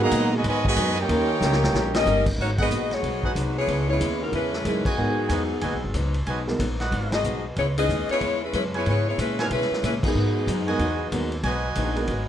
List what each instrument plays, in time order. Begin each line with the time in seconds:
Already playing: upright bass G#2
0.00 trombone section D#3 F#3 A#3, grand piano G#3 B3 D#4 F#4 A#4, trumpet section G#4 D#5 F#5 A#5
0.11 steel-string acoustic guitar G#2 F#3 B3 D#4, upright bass A#2, kick, hi-hat pedal, ride
0.33 trombone section B2 D#3 G#3, trumpet section F#4 B4 D#5
0.37 trumpet section G#5
0.44 upright bass G#2, steel-string acoustic guitar G#2 F#3 B3 D#4, trombone section B2 D#3 G#3, trumpet section B4 D#5 G#5, kick, ride
0.49 trumpet section F#4
0.65 trombone section B2 D#3 G#3, trumpet section F#4 B4 D#5 G#5, kick
0.77 upright bass F#2, steel-string acoustic guitar G#2 F#3 B3 D#4, kick, hi-hat pedal, ride
0.97 trombone section A#3 C#4 G4, trumpet section D#4 A#4 C#5 G5, ride
1.09 upright bass D#2, steel-string acoustic guitar D#3 A#3 C#4 G4, grand piano A#3 C#4 D#4 G4 A#4, kick, ride
1.41 upright bass C#2, steel-string acoustic guitar D#3 A#3 C#4 G4, snare, hi-hat pedal
1.52 snare
1.64 snare
1.73 upright bass A#1, steel-string acoustic guitar D#3 A#3 C#4 G4, snare
1.94 saxophone section C#4 G4 A#4 D#5, snare, ride
2.06 upright bass G1, steel-string acoustic guitar D#3 A#3 C#4 G4, grand piano A#3 C#4 D#4 G4 A#4, hi-hat pedal
2.26 kick, crash
2.37 upright bass G#1, steel-string acoustic guitar G#2 F#3 B3 D#4, kick
2.41 saxophone section A#3 D#4 F#4 C#5
2.58 grand piano G#3 B3 D#4 F#4 A#4, saxophone section B3 F#4 G#4 D#5, trumpet section D#4 G#4 B4 F#5, kick, crash
2.70 upright bass A#1, steel-string acoustic guitar G#2 F#3 B3 D#4, hi-hat pedal
2.91 saxophone section B3 F#4 G#4 C#5, snare, ride
3.02 upright bass B1, steel-string acoustic guitar G#2 F#3 B3 D#4, kick, ride
3.23 saxophone section G#3 D#4 F#4 B4, trumpet section D#4 G#4 B4 F#5, kick
3.35 upright bass C2, steel-string acoustic guitar G#2 F#3 B3 D#4, kick, hi-hat pedal, ride
3.58 saxophone section B3 E4 G#4 C#5
3.67 upright bass C#2, steel-string acoustic guitar C#3 G#3 B3 E4, kick, ride
3.88 grand piano G#3 C#4 E4 B4 D#5, saxophone section B3 E4 G#4 C#5
4.00 upright bass D#2, steel-string acoustic guitar C#3 G#3 B3 E4, kick, hi-hat pedal, ride
4.23 saxophone section F#3 B3 D#4 A#4
4.32 upright bass E2, steel-string acoustic guitar C#3 G#3 B3 E4, saxophone section G#3 C#4 E4 B4, kick, ride
4.53 snare
4.65 upright bass F#2, steel-string acoustic guitar C#3 G#3 B3 E4, grand piano G#3 C#4 D#4 E4 A#4, saxophone section G#3 C#4 E4 B4, kick, hi-hat pedal, ride
4.85 saxophone section F#3 B3 D#4 G#4, trumpet section F#4 D#5 G#5, muted upright bass stroke, kick, crash
4.97 steel-string acoustic guitar G#2 F#3 B3 D#4, upright bass G#2, grand piano G#3 B3 D#4 F#4 A#4
5.29 upright bass E2, steel-string acoustic guitar G#2 F#3 B3 D#4, trumpet section F#4 B4 D#5 G#5, kick, hi-hat pedal, ride
5.61 upright bass D#2, steel-string acoustic guitar G#2 F#3 B3 D#4, trumpet section F#4 B4 D#5 G#5, kick, ride
5.73 upright bass B1
5.84 upright bass G#1
5.94 upright bass C#2, steel-string acoustic guitar G#2 F#3 B3 D#4, kick, hi-hat pedal, ride
6.14 ride
6.26 upright bass B1, steel-string acoustic guitar G#2 F#3 B3 D#4, trumpet section F#4 B4 D#5 G#5, kick, ride
6.47 grand piano G#3 B3 D#4 F#4 A#4, snare
6.59 upright bass A#1, steel-string acoustic guitar G#2 F#3 B3 D#4, kick, hi-hat pedal, ride
6.80 trumpet section F#4 B4 D#5 F#5, snare, ride
6.92 upright bass G#1, steel-string acoustic guitar G#2 F#3 B3 D#4, kick, ride
7.12 saxophone section B3 F#4 G#4 D#5, snare, ride
7.23 upright bass B1, steel-string acoustic guitar G#2 F#3 B3 D#4, hi-hat pedal
7.55 upright bass C#2, steel-string acoustic guitar C#3 G#3 B3 E4, saxophone section B3 E4 G#4 C#5, kick, ride
7.77 grand piano G#3 C#4 D#4 E4 B4, saxophone section C#4 G#4 B4 D#5, ride
7.89 upright bass D#2, steel-string acoustic guitar C#3 G#3 B3 E4, kick, hi-hat pedal
8.09 saxophone section B3 E4 G#4 C#5, muted upright bass stroke, ride
8.21 upright bass E2, steel-string acoustic guitar C#3 G#3 B3 E4, kick, ride
8.43 saxophone section G#3 C#4 E4 B4
8.53 upright bass F#2, steel-string acoustic guitar C#3 G#3 B3 E4, saxophone section G#3 C#4 E4 B4, kick, hi-hat pedal, ride
8.73 saxophone section B3 E4 G#4 C#5, trumpet section E4 B4 C#5 G#5, ride
8.86 upright bass G#2, steel-string acoustic guitar C#3 G#3 B3 E4, saxophone section B3 E4 G#4 C#5, kick, ride
9.09 saxophone section B3 E4 G#4 C#5
9.18 upright bass A#2, steel-string acoustic guitar C#3 G#3 B3 E4, saxophone section G#3 C#4 E4 B4, kick, hi-hat pedal, ride
9.38 saxophone section F#3 B3 D#4 A#4, trumpet section E4 B4 C#5 G#5, snare, ride
9.50 upright bass B2, steel-string acoustic guitar C#3 G#3 B3 E4, saxophone section G#3 C#4 E4 B4, kick, ride
9.62 snare
9.71 muted upright bass stroke, snare
9.83 upright bass A#2, steel-string acoustic guitar C#3 G#3 B3 E4, saxophone section G#3 C#4 E4 B4, kick, hi-hat pedal, ride
10.03 saxophone section F#3 B3 D#4 G#4, grand piano G#3 B3 D#4 F#4 A#4, muted upright bass stroke, kick, crash
10.15 upright bass G#2, steel-string acoustic guitar G#2 F#3 B3 D#4
10.47 upright bass F#2, steel-string acoustic guitar G#2 F#3 B3 D#4, kick, hi-hat pedal, ride
10.68 grand piano G#3 B3 D#4 F#4 A#4, trumpet section F#4 B4 D#5 G#5, ride
10.79 upright bass E2, steel-string acoustic guitar G#2 F#3 B3 D#4, kick, ride
11.12 upright bass D#2, steel-string acoustic guitar G#2 F#3 B3 D#4, grand piano G#3 B3 D#4 F#4 A#4, kick, hi-hat pedal, ride
11.32 ride
11.43 upright bass B1, steel-string acoustic guitar G#2 F#3 B3 D#4, trumpet section F#4 B4 D#5 G#5, kick, ride
11.75 upright bass A#1, steel-string acoustic guitar G#2 F#3 B3 D#4, kick, hi-hat pedal, ride
11.96 grand piano G#3 B3 D#4 F#4 A#4, ride
12.07 upright bass G#1, steel-string acoustic guitar G#2 F#3 B3, kick, ride
12.12 steel-string acoustic guitar D#4